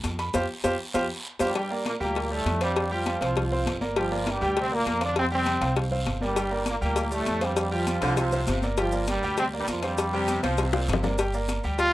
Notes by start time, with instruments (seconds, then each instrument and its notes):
0.03 upright bass F2, cowbell, high conga, short guiro, maracas
0.19 grand piano B5, cowbell, short guiro, maracas
0.34 upright bass F2, grand piano F4 G4 C5, cowbell, high conga, long guiro, maracas
0.64 upright bass F2, grand piano F4 G4 C5, cowbell, high conga, long guiro, maracas
0.94 upright bass F2, grand piano F4 G4 C5, cowbell, high conga, long guiro, maracas
1.39 upright bass F2, trombone section G2 G3, grand piano F4 G4 C5, cowbell, high conga, long guiro, maracas
1.55 grand piano G3 G4 G5, cowbell, high conga, long guiro
1.70 grand piano A#3 A#4 D5, high conga
1.85 trombone section A#2 A#3, cowbell, high conga, short guiro
2.00 upright bass D2, trombone section A#2 A#3, grand piano G3 G4 G5, high conga, short guiro
2.15 cowbell, high conga, long guiro
2.31 trombone section A2 A3, grand piano G3 G4 D5, high conga
2.46 upright bass F2, cowbell, high conga, short guiro
2.61 trombone section G2 G3, grand piano C4 C5 F5, cowbell, short guiro
2.76 cowbell, high conga, long guiro
2.91 trombone section F3 F4, grand piano G3 G4 G5, high conga
3.06 cowbell, high conga, short guiro
3.21 upright bass C2, grand piano C4 C5 F5, cowbell, high conga, short guiro
3.36 cowbell, high conga, low conga, long guiro
3.51 grand piano C4 C5 F5, high conga
3.66 upright bass G1, cowbell, high conga, short guiro
3.81 grand piano A#3 A#4 D5, high conga, short guiro
3.96 trombone section F3 F4, grand piano G3 G4 G5, cowbell, high conga, long guiro
4.11 grand piano A#3 A#4 D5, high conga
4.26 trombone section G2 G3, cowbell, high conga, short guiro
4.41 upright bass D2, grand piano G3 G4 G5, high conga, short guiro
4.56 trombone section C3 C4, cowbell, high conga, long guiro
4.71 trombone section A#2 A#3, grand piano A#3 A#4 D5, high conga
4.86 upright bass F2, cowbell, high conga, short guiro
5.01 trombone section D3 D4, grand piano C4 C5 F5, cowbell, high conga, short guiro
5.16 trombone section C3 C4, cowbell, high conga, long guiro
5.31 trombone section C3 C4, grand piano G3 G4 G5, high conga
5.46 cowbell, high conga, short guiro
5.61 upright bass C2, grand piano C4 C5 F5, cowbell, high conga, short guiro
5.76 cowbell, high conga, low conga, long guiro
5.91 grand piano C4 C5 F5, high conga, low conga
6.06 upright bass G1, cowbell, high conga, short guiro
6.21 trombone section G2 G3, grand piano A#3 A#4 D5, high conga, short guiro
6.36 grand piano G3 G4 G5, cowbell, high conga, long guiro, maracas
6.51 grand piano A#3 A#4 D5, high conga
6.66 trombone section A#2 A#3, cowbell, high conga, short guiro, maracas
6.81 upright bass D2, trombone section A#2 A#3, grand piano G3 G4 G5, high conga, short guiro, maracas
6.96 cowbell, high conga, long guiro, maracas
7.11 trombone section A2 A3, grand piano G3 G4 D5, high conga, maracas
7.26 upright bass F2, cowbell, high conga, short guiro, maracas
7.41 trombone section G2 G3, grand piano C4 C5 F5, cowbell, high conga, short guiro, maracas
7.56 cowbell, high conga, long guiro, maracas
7.71 trombone section F3 F4, grand piano G3 G4 G5, high conga
7.87 cowbell, high conga, short guiro, maracas
8.01 upright bass C2, saxophone section D3, grand piano C4 C5 F5, cowbell, high conga, short guiro, maracas
8.16 saxophone section C3, cowbell, high conga, low conga, long guiro, maracas
8.32 grand piano C4 C5 F5, high conga, low conga, maracas
8.47 upright bass G1, saxophone section C3, cowbell, high conga, short guiro, maracas
8.62 grand piano A#3 A#4 D5, high conga, short guiro, maracas
8.77 trombone section F3 F4, grand piano G3 G4 G5, cowbell, high conga, long guiro, maracas
8.92 grand piano A#3 A#4 D5, high conga, maracas
9.07 trombone section G2 G3, cowbell, high conga, short guiro, maracas
9.22 upright bass D2, grand piano G3 G4 G5, high conga, short guiro, maracas
9.37 trombone section C3 C4, cowbell, high conga, long guiro, maracas
9.53 grand piano A#3 A#4 D5, high conga
9.58 trombone section G2 G3
9.68 upright bass F2, trombone section F3 F4, cowbell, high conga, short guiro, maracas
9.83 trombone section G2 G3, grand piano C4 C5 F5, cowbell, high conga, short guiro, maracas
9.98 cowbell, high conga, long guiro, maracas
10.13 saxophone section C3, grand piano G3 G4 G5, high conga
10.28 cowbell, high conga, short guiro, maracas
10.43 upright bass C2, saxophone section F3, grand piano C4 C5 F5, cowbell, high conga, short guiro, maracas
10.57 cowbell, low conga, long guiro, maracas
10.63 saxophone section C3
10.73 saxophone section A#2, grand piano C4 C5 F5, high bongo, low conga
10.88 upright bass G1, saxophone section C3, cowbell, low conga, short guiro, maracas
10.93 low bongo
11.03 grand piano A#3 A#4 D5, low bongo, low conga, short guiro, maracas
11.18 grand piano G3 G4 G5, cowbell, high conga, long guiro, maracas
11.33 grand piano A#3 A#4 D5, high conga, maracas
11.48 cowbell, high conga, short guiro, maracas
11.63 upright bass D2, grand piano G3 G4 G5, high conga, short guiro, maracas
11.79 trumpet F4, cowbell, high conga, long guiro, maracas